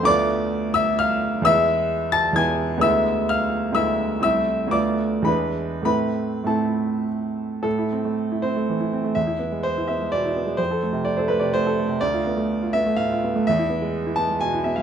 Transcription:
<<
  \new Staff \with { instrumentName = "Grand piano" } { \time 3/4 \key a \minor \tempo 4 = 126 <d'' d'''>4. <e'' e'''>8 <f'' f'''>8 r8 | <e'' e'''>4. <a'' a'''>8 <gis'' gis'''>4 | <e'' e'''>4 <f'' f'''>4 <e'' e'''>4 | <e'' e'''>4 <d'' d'''>4 <b' b''>4 |
<b' b''>4 <a' a''>4 r4 | a'4. c''4. | e''4 c''8 e''8 d''4 | c''4 d''16 c''16 b'16 d''16 c''4 |
d''4. e''8 f''8 r8 | e''4. a''8 gis''8 e''16 f''16 | }
  \new Staff \with { instrumentName = "Grand piano" } { \time 3/4 \key a \minor <d, a b f'>2. | <e, gis b e'>2 <e, gis b e'>4 | <d, gis b e'>2 <d, gis b e'>4 | <c, a c' e'>4 <d, a b f'>4 <e, gis d' e'>4 |
<a, a c' e'>4 <a, a c' e'>2 | a,16 e'16 c'16 a8 e'16 c'16 a16 e16 e'16 c'16 a16 | e,16 e'16 b16 gis8 e'16 b16 gis16 b,16 e'16 b16 gis16 | f,16 a'16 a16 c8 a'16 a16 c16 a16 a'16 a16 c16 |
d,16 f'16 b16 a8 f'16 b16 a16 a,16 f'16 b16 a16 | e,16 e'16 b16 gis8 e'16 b16 gis16 b,16 e'16 b16 gis16 | }
>>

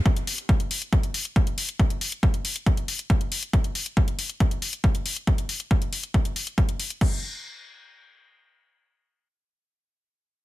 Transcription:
\new DrumStaff \with { instrumentName = "Drums" } \drummode { \time 4/4 \tempo 4 = 138 <hh bd>16 hh16 hho16 hh16 <hh bd>16 hh16 hho16 hh16 <hh bd>16 hh16 hho16 hh16 <hh bd>16 hh16 hho16 hh16 | <hh bd>16 hh16 hho16 hh16 <hh bd>16 hh16 hho16 hh16 <hh bd>16 hh16 hho16 hh16 <hh bd>16 hh16 hho16 hh16 | <hh bd>16 hh16 hho16 hh16 <hh bd>16 hh16 hho16 hh16 <hh bd>16 hh16 hho16 hh16 <hh bd>16 hh16 hho16 hh16 | <hh bd>16 hh16 hho16 hh16 <hh bd>16 hh16 hho16 hh16 <hh bd>16 hh16 hho16 hh16 <hh bd>16 hh16 hho16 hh16 |
<cymc bd>4 r4 r4 r4 | r4 r4 r4 r4 | }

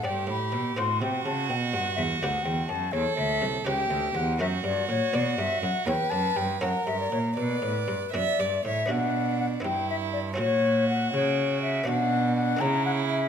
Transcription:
<<
  \new Staff \with { instrumentName = "Flute" } { \time 6/8 \key g \lydian \tempo 4. = 81 g''8 b''4 c'''8 g''8 a''8 | g''8 fis''8 e''8 fis''8 g''8 a''8 | \key b \minor cis''8 e''4 g''4 fis''8 | e''8 d''8 cis''8 d''8 e''8 fis''8 |
g''8 a''8 g''8 fis''8 e''16 d''16 cis''8 | b'4. d''4 e''8 | fis''4 fis''8 g''8 e''8 d''8 | cis''4 fis''8 cis''4 e''8 |
fis''4 fis''8 ais''8 fis''8 e''8 | }
  \new Staff \with { instrumentName = "Violin" } { \time 6/8 \key g \lydian g'4. fis'4.~ | fis'2. | \key b \minor a'4. g'4. | fis'2. |
b'4. ais'4. | d''4. e''8 d''8 cis''8 | d'4. e'4. | fis'2. |
d'4. e'4. | }
  \new Staff \with { instrumentName = "Harpsichord" } { \time 6/8 \key g \lydian <d' d''>4. <c' fis' c''>4. | r4. <d' g' b'>4. | \key b \minor r4. <cis' g' b'>4. | <cis' fis' ais'>4. <b fis' d''>4. |
<cis' e' cis''>4. <cis' e' ais'>4. | r4. <b d' fis'>4. | <b d' fis'>4. <b e'>4. | <cis' e' fis'>2. |
<b d' fis'>4. <ais e'>4. | }
  \new Staff \with { instrumentName = "Harpsichord" } { \clef bass \time 6/8 \key g \lydian g,8 a,8 b,8 a,8 c8 cis8 | b,8 g,8 e,8 d,8 e,8 fis,8 | \key b \minor e,8 d,8 c,8 cis,8 d,8 e,8 | fis,8 g,8 ais,8 b,8 g,8 fis,8 |
e,8 fis,8 g,8 fis,8 g,8 ais,8 | b,8 a,8 g,8 fis,8 g,8 a,8 | b,4. g,4. | ais,4. cis4. |
b,4. cis4. | }
  \new Staff \with { instrumentName = "Cello" } { \clef bass \time 6/8 \key g \lydian g,8 a,8 b,8 a,8 c8 cis8 | b,8 g,8 e,8 d,8 e,8 fis,8 | \key b \minor e,8 d,8 c,8 cis,8 d,8 e,8 | fis,8 g,8 ais,8 b,8 g,8 fis,8 |
e,8 fis,8 g,8 fis,8 g,8 ais,8 | b,8 a,8 g,8 fis,8 g,8 a,8 | b,4. g,4. | ais,4. cis4. |
b,4. cis4. | }
>>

